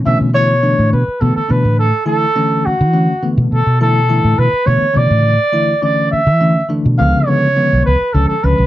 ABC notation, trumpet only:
X:1
M:6/8
L:1/16
Q:3/8=69
K:Bdor
V:1 name="Trumpet"
e2 c4 B2 A A B2 | A2 A4 F4 z2 | A2 A4 B2 c2 d2- | d4 d2 e4 z2 |
^e2 c4 B2 A A B2 |]